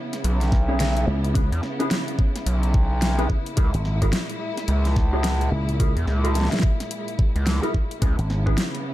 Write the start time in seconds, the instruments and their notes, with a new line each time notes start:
Already playing: string section C#3 B3 E4
0.13 snare, closed hi-hat
0.24 analog synth bass B1, closed hi-hat
0.41 snare, closed hi-hat
0.52 kick, snare
0.68 clean electric guitar C#4 E4 G#4 C#5
0.80 snare, closed hi-hat
0.97 closed hi-hat
1.07 slap bass C#2
1.24 closed hi-hat
1.34 clean electric guitar C#4 E4 G#4 B4, kick, closed hi-hat
1.52 analog synth bass E2, closed hi-hat
1.63 snare
1.79 clean electric guitar C#4 E4 G#4 B4, closed hi-hat
1.91 snare, closed hi-hat
2.08 closed hi-hat
2.19 kick
2.36 snare, closed hi-hat
2.46 analog synth bass B1, closed hi-hat
2.63 closed hi-hat
2.74 kick
3.02 snare, closed hi-hat
3.18 clean electric guitar C#4 E4 G#4 B4, closed hi-hat
3.30 kick
3.46 closed hi-hat
3.57 analog synth bass C#2, string section A#2 G#3, clean electric guitar E4 F#4 G#4 A#4, kick, closed hi-hat
3.74 slap bass G#1, closed hi-hat
3.85 snare
4.02 clean electric guitar E4 F#4 G#4 A#4, kick, closed hi-hat
4.13 snare, closed hi-hat
4.30 closed hi-hat
4.57 snare, closed hi-hat
4.68 analog synth bass C#2, closed hi-hat
4.85 snare, closed hi-hat
4.96 kick, snare
5.13 clean electric guitar E4 F#4 G#4 C#5
5.24 snare, closed hi-hat
5.41 closed hi-hat
5.51 slap bass C#2
5.69 closed hi-hat
5.80 clean electric guitar E4 F#4 G#4 A#4, kick, closed hi-hat
5.96 analog synth bass E2, closed hi-hat
6.07 analog synth bass C#2, snare
6.24 clean electric guitar E4 F#4 G#4 A#4, closed hi-hat
6.35 snare, closed hi-hat
6.41 snare
6.44 snare
6.52 snare, closed hi-hat
6.59 kick, snare
6.80 snare, closed hi-hat
6.91 closed hi-hat
7.08 closed hi-hat
7.19 kick
7.36 analog synth bass C#2, closed hi-hat
7.47 snare, closed hi-hat
7.63 clean electric guitar E4 F#4 G#4 A#4, closed hi-hat
7.74 kick
7.91 closed hi-hat
8.01 analog synth bass C#2, string section C#3 B3, clean electric guitar C#4 E4 G#4 B4, kick, closed hi-hat
8.19 slap bass G#1, closed hi-hat
8.30 snare
8.46 clean electric guitar C#4 E4 G#4 B4, kick
8.58 snare, closed hi-hat
8.75 closed hi-hat